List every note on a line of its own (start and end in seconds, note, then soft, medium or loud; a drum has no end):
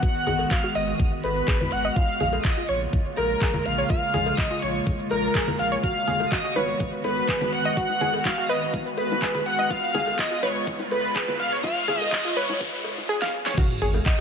0.00 1.92 D#3 medium
0.00 9.66 G#3 medium
0.00 1.92 B3 medium
0.00 1.92 F#4 medium
0.00 0.08 F#4 medium
0.00 0.48 F#5 loud
0.00 0.48 F#6 loud
0.00 kick loud
0.00 closed hi-hat medium
0.15 closed hi-hat soft
0.27 0.44 G#1 medium
0.27 0.32 G#4 medium
0.27 open hi-hat loud
0.27 high conga medium
0.39 closed hi-hat soft
0.39 cowbell medium
0.51 0.54 F#4 medium
0.51 0.77 F5 loud
0.51 0.74 F6 loud
0.51 kick loud
0.51 clap loud
0.51 closed hi-hat medium
0.64 0.68 F#4 medium
0.64 open hi-hat medium
0.75 0.92 G#1 loud
0.75 0.83 D#5 medium
0.75 1.00 D#5 medium
0.75 1.00 D#6 medium
0.75 open hi-hat loud
0.88 closed hi-hat soft
0.99 kick loud
0.99 closed hi-hat medium
0.99 high conga medium
1.12 closed hi-hat soft
1.24 1.41 G#1 medium
1.24 1.73 B4 loud
1.24 1.69 B5 medium
1.24 open hi-hat loud
1.24 cowbell medium
1.36 closed hi-hat soft
1.48 1.65 G#1 medium
1.48 1.53 G#4 loud
1.48 kick loud
1.48 clap loud
1.48 closed hi-hat medium
1.61 1.63 B4 medium
1.61 closed hi-hat soft
1.61 high conga medium
1.72 1.89 G#1 medium
1.72 1.95 F#5 loud
1.72 1.96 F#6 loud
1.72 open hi-hat loud
1.85 1.89 D#5 loud
1.85 closed hi-hat soft
1.96 5.79 C#3 medium
1.96 5.79 A#3 medium
1.96 5.79 F4 medium
1.96 2.01 F4 medium
1.96 2.41 F5 loud
1.96 2.41 F6 loud
1.96 kick loud
1.96 closed hi-hat medium
2.09 closed hi-hat soft
2.20 2.38 A#1 medium
2.20 2.26 G#4 medium
2.20 open hi-hat loud
2.20 high conga medium
2.33 closed hi-hat soft
2.33 cowbell medium
2.44 2.48 F4 medium
2.44 2.67 D#5 medium
2.44 2.67 D#6 medium
2.44 kick loud
2.44 clap loud
2.44 closed hi-hat medium
2.57 2.62 F4 medium
2.57 open hi-hat medium
2.69 2.86 A#1 loud
2.69 2.80 C#5 medium
2.69 2.76 C#5 medium
2.69 2.80 C#6 medium
2.69 open hi-hat loud
2.82 closed hi-hat soft
2.93 kick loud
2.93 closed hi-hat medium
2.93 high conga medium
3.06 closed hi-hat soft
3.17 3.34 A#1 medium
3.17 3.67 A#4 medium
3.17 3.62 A#5 medium
3.17 open hi-hat loud
3.17 cowbell medium
3.30 closed hi-hat soft
3.41 3.59 A#1 medium
3.41 3.46 G#4 loud
3.41 kick loud
3.41 clap loud
3.41 closed hi-hat medium
3.54 3.57 A#4 medium
3.54 closed hi-hat soft
3.54 high conga medium
3.65 3.83 A#1 loud
3.65 3.89 F5 loud
3.65 3.88 F6 loud
3.65 open hi-hat loud
3.78 3.83 C#5 medium
3.78 closed hi-hat soft
3.90 3.95 F4 medium
3.90 4.39 F5 loud
3.90 4.35 F6 loud
3.90 kick loud
3.90 closed hi-hat medium
4.03 closed hi-hat soft
4.14 4.31 A#1 medium
4.14 4.19 G#4 medium
4.14 open hi-hat loud
4.14 high conga medium
4.26 closed hi-hat soft
4.26 cowbell medium
4.38 4.41 F4 medium
4.38 4.64 D#5 loud
4.38 4.62 D#6 loud
4.38 kick loud
4.38 clap loud
4.38 closed hi-hat medium
4.51 4.55 F4 medium
4.51 open hi-hat medium
4.62 4.80 A#1 loud
4.62 4.87 C#5 medium
4.62 4.70 C#5 medium
4.62 4.87 C#6 medium
4.62 open hi-hat loud
4.75 closed hi-hat soft
4.87 kick loud
4.87 closed hi-hat medium
4.87 high conga medium
4.99 closed hi-hat soft
5.11 5.28 A#1 medium
5.11 5.56 A#4 loud
5.11 5.56 A#5 medium
5.11 open hi-hat loud
5.11 cowbell medium
5.24 closed hi-hat soft
5.35 5.52 A#1 medium
5.35 5.40 G#4 loud
5.35 kick loud
5.35 clap loud
5.35 closed hi-hat medium
5.47 5.50 A#4 medium
5.47 closed hi-hat soft
5.47 high conga medium
5.59 5.76 A#1 medium
5.59 5.70 F5 loud
5.59 5.70 F6 loud
5.59 open hi-hat loud
5.72 5.76 C#5 loud
5.72 closed hi-hat soft
5.83 9.67 D#3 medium
5.83 13.05 B3 medium
5.83 9.67 F#4 medium
5.83 5.88 F#4 medium
5.83 6.33 F5 loud
5.83 6.28 F6 loud
5.83 kick loud
5.83 closed hi-hat medium
5.83 riser medium
5.96 closed hi-hat soft
6.08 6.25 G#1 medium
6.08 6.13 G#4 medium
6.08 open hi-hat loud
6.08 high conga medium
6.20 closed hi-hat soft
6.20 cowbell medium
6.20 high bongo soft
6.32 6.35 F#4 medium
6.32 6.57 D#5 loud
6.32 6.56 D#6 loud
6.32 kick loud
6.32 clap loud
6.32 closed hi-hat medium
6.44 6.49 F#4 medium
6.44 open hi-hat medium
6.56 6.73 G#1 loud
6.56 6.61 B4 loud
6.56 6.80 C#5 medium
6.56 6.80 C#6 medium
6.56 open hi-hat loud
6.56 high bongo medium
6.69 closed hi-hat soft
6.80 kick loud
6.80 closed hi-hat medium
6.80 high conga medium
6.93 closed hi-hat soft
7.04 7.21 G#1 medium
7.04 7.54 B4 loud
7.04 7.49 B5 medium
7.04 open hi-hat loud
7.04 cowbell medium
7.04 high bongo soft
7.17 closed hi-hat soft
7.28 7.46 G#1 medium
7.28 7.34 G#4 loud
7.28 kick loud
7.28 clap loud
7.28 closed hi-hat medium
7.41 7.44 B4 medium
7.41 closed hi-hat soft
7.41 high bongo medium
7.41 high conga medium
7.53 7.70 G#1 medium
7.53 7.76 F#5 loud
7.53 7.76 F#6 loud
7.53 open hi-hat loud
7.65 7.70 D#5 loud
7.65 closed hi-hat soft
7.77 7.82 F#4 medium
7.77 8.22 F#5 loud
7.77 8.22 F#6 loud
7.77 kick loud
7.77 closed hi-hat medium
7.90 closed hi-hat soft
7.90 high bongo soft
8.01 8.18 G#1 medium
8.01 8.06 G#4 medium
8.01 open hi-hat loud
8.01 high conga medium
8.14 closed hi-hat soft
8.14 cowbell medium
8.25 8.28 F#4 medium
8.25 8.51 F5 loud
8.25 8.48 F6 loud
8.25 kick loud
8.25 clap loud
8.25 closed hi-hat medium
8.25 high bongo medium
8.38 8.43 F#4 medium
8.38 open hi-hat medium
8.49 8.67 G#1 loud
8.49 8.54 B4 loud
8.49 8.74 D#5 medium
8.49 8.74 D#6 medium
8.49 open hi-hat loud
8.62 closed hi-hat soft
8.73 kick loud
8.73 closed hi-hat medium
8.73 high bongo soft
8.73 high conga medium
8.86 closed hi-hat soft
8.97 9.15 G#1 medium
8.97 9.43 B4 medium
8.97 9.43 B5 medium
8.97 open hi-hat loud
8.97 cowbell medium
9.10 closed hi-hat soft
9.10 high bongo medium
9.22 9.39 G#1 medium
9.22 9.27 G#4 loud
9.22 kick loud
9.22 clap loud
9.22 closed hi-hat medium
9.34 9.37 B4 medium
9.34 closed hi-hat soft
9.34 high conga medium
9.46 9.63 G#1 medium
9.46 9.72 F#5 loud
9.46 9.69 F#6 loud
9.46 open hi-hat medium
9.59 9.63 D#5 loud
9.59 closed hi-hat soft
9.59 high bongo soft
9.70 13.06 C#3 medium
9.70 13.06 G#3 medium
9.70 13.06 F4 medium
9.70 9.75 F4 medium
9.70 10.20 F5 loud
9.70 10.19 F6 loud
9.70 kick loud
9.70 closed hi-hat medium
9.83 closed hi-hat soft
9.94 10.12 C#2 loud
9.94 10.00 G#4 medium
9.94 open hi-hat loud
9.94 high bongo medium
9.94 high conga medium
10.07 closed hi-hat soft
10.07 cowbell medium
10.19 10.22 F4 medium
10.19 10.45 D#5 loud
10.19 10.43 D#6 loud
10.19 kick loud
10.19 clap loud
10.19 closed hi-hat medium
10.31 10.36 F4 medium
10.31 open hi-hat medium
10.43 10.60 C#2 loud
10.43 10.48 B4 loud
10.43 10.67 C#5 medium
10.43 10.67 C#6 medium
10.43 open hi-hat loud
10.43 high bongo soft
10.56 closed hi-hat soft
10.67 kick loud
10.67 closed hi-hat medium
10.67 high conga medium
10.79 closed hi-hat soft
10.79 high bongo medium
10.91 11.09 C#2 medium
10.91 11.36 B4 loud
10.91 11.36 B5 medium
10.91 open hi-hat loud
10.91 cowbell medium
11.04 closed hi-hat soft
11.16 11.33 C#2 medium
11.16 11.21 G#4 loud
11.16 kick loud
11.16 clap loud
11.16 closed hi-hat medium
11.28 11.31 B4 medium
11.28 closed hi-hat soft
11.28 high bongo soft
11.28 high conga loud
11.40 11.57 C#2 medium
11.40 11.51 F5 loud
11.40 11.51 F6 loud
11.40 open hi-hat medium
11.52 11.57 C#5 loud
11.52 closed hi-hat soft
11.63 11.69 F4 medium
11.63 12.01 F5 loud
11.63 12.09 F6 loud
11.63 kick loud
11.63 closed hi-hat medium
11.63 high bongo medium
11.77 closed hi-hat soft
11.88 12.05 C#2 loud
11.88 11.93 G#4 medium
11.88 open hi-hat loud
11.88 high conga loud
12.01 12.12 D#5 loud
12.01 closed hi-hat soft
12.01 cowbell medium
12.12 12.15 F4 medium
12.12 12.38 D#5 loud
12.12 12.36 D#6 loud
12.12 kick loud
12.12 clap loud
12.12 closed hi-hat medium
12.12 high bongo soft
12.25 12.30 F4 medium
12.25 open hi-hat medium
12.36 12.54 C#2 loud
12.36 12.42 B4 loud
12.36 12.61 C#5 medium
12.36 12.61 C#6 medium
12.36 open hi-hat loud
12.49 closed hi-hat soft
12.49 high bongo medium
12.60 kick loud
12.60 closed hi-hat medium
12.60 high conga medium
12.74 closed hi-hat soft
12.84 13.02 C#2 medium
12.84 open hi-hat loud
12.84 cowbell medium
12.98 closed hi-hat soft
12.98 high bongo soft
13.09 13.17 G#4 loud
13.22 13.26 F5 loud
13.22 snare medium
13.46 13.51 C#5 loud
13.46 snare loud
13.57 14.21 D#3 medium
13.57 14.21 G#3 medium
13.57 14.21 B3 medium
13.57 13.63 F#4 medium
13.57 14.21 F#4 medium
13.57 kick loud
13.57 closed hi-hat medium
13.57 crash loud
13.57 sub drop medium
13.57 high conga loud
13.82 13.99 G#1 loud
13.82 13.87 G#4 medium
13.82 open hi-hat loud
13.94 closed hi-hat medium
13.94 cowbell medium
13.94 high bongo soft
14.06 14.09 F#4 medium
14.06 14.21 D#5 medium
14.06 14.21 D#6 medium
14.06 kick loud
14.06 clap loud
14.06 closed hi-hat medium